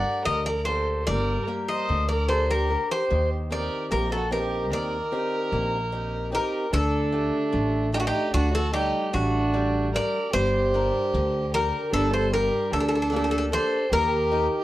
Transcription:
Already playing: G3 D4 G4 A#4 D5 F#5
0.26 D2 D3 A#4 D#5
0.46 A#4 D5
0.65 A#3 D4 G4 A4 C5
1.07 G1 G3 A#4 D5
1.47 A#3 G4 A#4
1.68 C5 D#5
1.89 D2 D3
2.09 A#4 D5
2.28 D4 G4 A4 A#4 C5
2.50 G4 A#4
2.70 D4 G4 A#4
2.91 G4 C5
3.10 D#2 D#3
3.50 C4 D#4 G4 A#4 D5
3.91 A#1 A#3 G4 A#4
4.12 F#4 A4
4.31 C4 D#4 G4 A#4
4.72 D#2 D#3 A#4 D5
5.12 C4 D#4 G4
5.52 A#1 A#3
5.92 C4 D#4 G4
6.32 C4 D#4 G4 A#4
6.73 D2 D3 D4 A4
7.12 A3 D4 G4
7.53 A1 A3
7.93 A3 D4 D#4 G4
8.00 D4 F#4
8.07 D#4 G4
8.34 D2 D4 F#4
8.54 F#4 A4
8.73 G3 A3 D#4 G4 D5
9.13 A1 A3 D4 F#4
9.54 G3 D4
9.94 D4 G4 A#4 D5
10.33 G1 G3 G4 C5
10.74 D4 G4 A#4
11.14 D2 D3
11.54 D4 G4 A#4
11.93 G1 G3 D4 A4
12.13 A4 C5
12.33 D4 G4 A#4
12.72 D2 D3 D4 A4
12.80 A4
12.89 A4
12.95 A4
13.02 A4
13.10 A#3 D4 G4 A4
13.16 A4
13.24 A4
13.31 A4
13.38 A4
13.52 D4 G4 A4 C5 D5
13.91 D#2 D#3 G4 A#4
14.31 D#4 G4 A#4

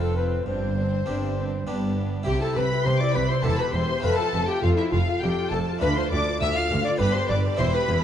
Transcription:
Already playing: F1 F2 C4 F4 A4
0.01 A4
0.15 C4 F4 B4
0.46 G1 G2 C4 D4 C5
0.76 C4 D4
1.06 G1 G2 C4 D4 G4
1.37 C4 D4
1.66 G1 G2 B3 D4 G4
1.95 B3 D4
2.23 C2 C3 E4 G4 G5
2.41 E4 A4 A5
2.55 C2 C3 G4 B4 B5
2.71 E4
2.85 C2 C3 G4 C5 C6
2.99 E4 D5 D6
3.14 C2 C3 G4 B4 B5
3.29 E4 C5 C6
3.42 E1 E2 C4 E4 G4 A4 A5
3.58 G4 B4 B5
3.73 E1 E2 E4 C5 C6
3.90 G4
4.00 F1 A3 C4 F4 B4 B5
4.04 F2 A4 B4
4.17 F4 A4 A5
4.33 F1 F2 A4
4.47 F4 G4 G5
4.62 F1 F2 F4 A4 F5
4.76 E4 F4 E5
4.91 F1 F2 F4 A4 F5
5.09 F4
5.22 F1 F2 G4 A4 G5
5.38 F4
5.51 F1 F2 A4 A5
5.67 F4
5.79 D2 A3 D4 F4 B4 B5
5.83 D2
5.96 F4 C5 C6
6.10 D2 D4 D5 D6
6.27 F4
6.40 D2 D4 E5 E6
6.54 F4 F5 F6
6.71 D2 D4
6.83 F4 D5 D6
6.96 G1 G2 B3 D4 G4 B4 B5
7.01 G2 B4
7.13 G4 C5 C6
7.28 G1 G2 B4 D5 D6
7.45 G4
7.55 E2 C4 E4 G4 C5 C6
7.59 E1 E2 E4
7.73 G4 B4 B5
7.88 E1 E2 E4

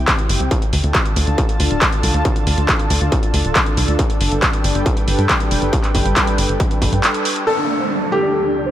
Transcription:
Already playing: C3 C4 E4 G4 G5
0.08 kick, clap, closed hi-hat
0.19 closed hi-hat
0.29 G1, open hi-hat
0.40 C2, closed hi-hat
0.51 D3 D4 F4 A4 A5, kick, closed hi-hat
0.62 closed hi-hat
0.73 D2, open hi-hat
0.84 D2, closed hi-hat
0.95 kick, clap, closed hi-hat
1.06 closed hi-hat
1.16 D2, open hi-hat
1.27 D2, closed hi-hat
1.38 kick, closed hi-hat
1.49 closed hi-hat
1.60 D2, open hi-hat
1.71 D1, closed hi-hat
1.82 kick, clap, closed hi-hat
1.92 closed hi-hat
2.03 C2, open hi-hat
2.14 D2, closed hi-hat
2.25 kick, closed hi-hat
2.36 closed hi-hat
2.47 D2, open hi-hat
2.58 D2, closed hi-hat
2.69 kick, clap, closed hi-hat
2.79 closed hi-hat
2.90 D2, open hi-hat
3.01 D2, closed hi-hat
3.12 kick, closed hi-hat
3.23 closed hi-hat
3.34 D2, open hi-hat
3.45 D1, closed hi-hat
3.56 kick, clap, closed hi-hat
3.66 closed hi-hat
3.77 C2, open hi-hat
3.88 D2, closed hi-hat
3.99 G3 B4 G5, kick, closed hi-hat
4.10 closed hi-hat
4.21 G1, open hi-hat
4.32 G1, closed hi-hat
4.42 kick, clap, closed hi-hat
4.53 closed hi-hat
4.64 G1, open hi-hat
4.75 G1, closed hi-hat
4.86 kick, closed hi-hat
4.97 closed hi-hat
5.08 G1, open hi-hat
5.18 G2, closed hi-hat
5.29 kick, clap, closed hi-hat
5.40 closed hi-hat
5.51 F1, open hi-hat
5.62 G1, closed hi-hat
5.73 kick, closed hi-hat
5.84 clap, closed hi-hat
5.95 G1, kick, open hi-hat
6.05 G1, closed hi-hat
6.16 kick, clap, closed hi-hat
6.27 closed hi-hat
6.38 G1, open hi-hat
6.49 G1, closed hi-hat
6.60 kick, closed hi-hat
6.71 closed hi-hat
6.82 G1, kick, open hi-hat
6.92 G2, closed hi-hat
7.04 clap, closed hi-hat
7.14 closed hi-hat
7.25 open hi-hat
7.36 closed hi-hat
7.47 D2 D3 A3 F4 A4 D5, downlifter
7.58 D4
7.69 D4
7.79 C5
7.90 D4
8.01 D4
8.12 G4 A4
8.23 D4
8.34 A4
8.45 D4
8.55 D4
8.66 C5

